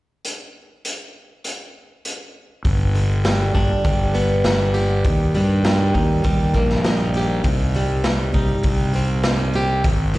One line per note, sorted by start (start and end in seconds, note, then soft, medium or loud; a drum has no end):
0.25 closed hi-hat soft
0.85 closed hi-hat soft
1.44 closed hi-hat soft
2.05 closed hi-hat soft
2.65 3.51 G1 medium
2.65 4.15 G2 medium
2.65 kick loud
2.65 open hi-hat medium
2.95 4.45 D3 medium
2.95 open hi-hat soft
3.25 3.84 G3 medium
3.25 snare medium
3.25 open hi-hat medium
3.54 3.69 G1 medium
3.54 4.44 D4 medium
3.54 kick medium
3.54 open hi-hat soft
3.84 5.01 G1 medium
3.84 5.35 G3 medium
3.84 kick medium
3.84 open hi-hat medium
4.15 5.05 B3 medium
4.15 open hi-hat soft
4.44 5.05 D4 medium
4.44 snare medium
4.44 open hi-hat medium
4.74 7.16 G4 medium
4.74 open hi-hat soft
5.04 5.33 D#2 medium
5.04 6.55 D#3 medium
5.04 kick medium
5.04 open hi-hat medium
5.34 5.92 G2 medium
5.34 5.63 G3 medium
5.34 open hi-hat soft
5.64 6.24 G3 medium
5.64 snare loud
5.64 open hi-hat medium
5.94 6.23 D#2 medium
5.94 6.86 D#4 medium
5.94 kick medium
5.94 open hi-hat soft
6.24 6.53 D#2 medium
6.24 7.45 G3 medium
6.24 kick loud
6.24 open hi-hat medium
6.54 7.41 A#1 medium
6.54 7.46 A#3 medium
6.54 kick medium
6.54 open hi-hat soft
6.70 snare soft
6.84 8.34 D#4 medium
6.84 snare loud
6.84 open hi-hat medium
7.14 7.46 G4 medium
7.14 open hi-hat soft
7.44 8.31 C2 medium
7.44 8.96 C3 medium
7.44 kick medium
7.44 open hi-hat medium
7.74 8.04 G3 medium
7.74 open hi-hat soft
8.04 8.64 G3 medium
8.04 snare medium
8.04 open hi-hat medium
8.34 8.49 C2 medium
8.34 9.24 D#4 medium
8.34 kick medium
8.34 open hi-hat soft
8.63 9.81 C2 medium
8.63 9.85 G3 medium
8.63 kick medium
8.63 open hi-hat medium
8.93 9.85 C4 medium
8.93 open hi-hat soft
9.23 9.85 D#4 medium
9.23 snare loud
9.23 open hi-hat medium
9.53 9.85 G4 medium
9.53 open hi-hat soft
9.84 10.13 G#1 medium
9.84 10.18 G#2 medium
9.84 kick loud
9.84 open hi-hat medium
10.14 10.18 C2 medium
10.14 10.18 D#3 medium
10.14 open hi-hat soft